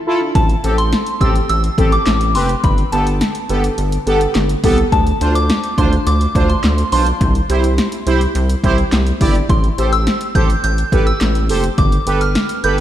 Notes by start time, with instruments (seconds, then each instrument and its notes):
0.07 analog polysynth E4 F4 A4
0.21 synth pluck D4
0.35 analog synth bass A1, synth bell A5, kick, closed hi-hat
0.50 closed hi-hat
0.64 analog synth bass A1, analog polysynth C4 G4 A4, closed hi-hat
0.78 synth bell C6, closed hi-hat
0.93 snare, closed hi-hat
1.07 closed hi-hat
1.21 analog synth bass A1, analog polysynth C4 G4 A4, synth bell E6, kick, closed hi-hat
1.36 closed hi-hat
1.49 analog synth bass A1, synth bell E6, closed hi-hat
1.64 closed hi-hat
1.78 analog synth bass A1, analog polysynth C4 G4 A4, kick, closed hi-hat
1.92 synth bell D6, closed hi-hat
2.06 analog synth bass A1, snare, clap, closed hi-hat
2.21 closed hi-hat
2.35 analog synth bass F1, analog polysynth C4 G4 B4, synth bell C6, open hi-hat
2.49 closed hi-hat
2.64 analog synth bass G1, synth bell B5, kick, closed hi-hat
2.78 closed hi-hat
2.92 analog synth bass G1, analog polysynth B3 G4 A4, synth bell A5, closed hi-hat
3.07 closed hi-hat
3.21 snare, closed hi-hat
3.35 closed hi-hat
3.49 analog synth bass G1, analog polysynth B3 G4 A4, closed hi-hat
3.64 closed hi-hat
3.78 analog synth bass G1, closed hi-hat
3.92 closed hi-hat
4.07 analog synth bass G1, analog polysynth B3 G4 A4, closed hi-hat
4.21 closed hi-hat
4.35 analog synth bass G1, snare, clap, closed hi-hat
4.49 closed hi-hat
4.64 analog synth bass C2, analog polysynth B3 G4 A4, kick, open hi-hat
4.78 closed hi-hat
4.92 analog synth bass D2, synth bell A5, kick, closed hi-hat
5.07 closed hi-hat
5.21 analog synth bass D2, analog polysynth D4 F4 C5, closed hi-hat
5.35 synth bell D6, closed hi-hat
5.50 snare, closed hi-hat
5.64 closed hi-hat
5.78 analog synth bass D2, analog polysynth D4 F4 C5, synth bell C6, kick, closed hi-hat
5.93 closed hi-hat
6.07 analog synth bass D2, synth bell D6, closed hi-hat
6.21 closed hi-hat
6.35 analog synth bass D2, analog polysynth D4 F4 C5, kick, closed hi-hat
6.50 synth bell C6, closed hi-hat
6.64 analog synth bass D2, snare, clap, closed hi-hat
6.78 closed hi-hat
6.92 analog synth bass B1, analog polysynth D4 F4 C5, synth bell C6, open hi-hat
7.06 closed hi-hat
7.21 analog synth bass C2, kick, closed hi-hat
7.35 closed hi-hat
7.49 analog synth bass C2, analog polysynth E4 G4 C5, closed hi-hat
7.64 closed hi-hat
7.78 snare, closed hi-hat
7.92 closed hi-hat
8.06 analog synth bass C2, analog polysynth E4 G4 C5, closed hi-hat
8.21 closed hi-hat
8.35 analog synth bass C2, closed hi-hat
8.50 closed hi-hat
8.64 analog synth bass C2, analog polysynth E4 G4 C5, kick, closed hi-hat
8.78 closed hi-hat
8.92 analog synth bass C2, snare, clap, closed hi-hat
9.07 closed hi-hat
9.21 analog synth bass G1, analog polysynth E4 G4 D5, kick, open hi-hat
9.35 closed hi-hat
9.49 analog synth bass A1, synth bell C6, kick, closed hi-hat
9.64 closed hi-hat
9.78 analog synth bass A1, analog polysynth G4 A4 C5, closed hi-hat
9.93 synth bell E6, closed hi-hat
10.07 snare, closed hi-hat
10.21 closed hi-hat
10.35 analog synth bass A1, analog polysynth G4 A4 C5, synth bell G6, kick, closed hi-hat
10.50 closed hi-hat
10.64 analog synth bass A1, synth bell G6, closed hi-hat
10.78 closed hi-hat
10.92 analog synth bass A1, analog polysynth G4 A4 B4, kick, closed hi-hat
11.07 synth bell E6, closed hi-hat
11.21 analog synth bass A1, snare, clap, closed hi-hat
11.35 closed hi-hat
11.49 analog synth bass F1, analog polysynth G4 A4 C5, open hi-hat
11.64 closed hi-hat
11.78 analog synth bass G1, synth bell D6, kick, closed hi-hat
11.92 closed hi-hat
12.07 analog synth bass G1, analog polysynth G4 A4 B4, closed hi-hat
12.21 synth bell F6, closed hi-hat
12.35 snare, closed hi-hat
12.49 closed hi-hat
12.64 analog synth bass G1, analog polysynth G4 A4 B4, synth bell G6, closed hi-hat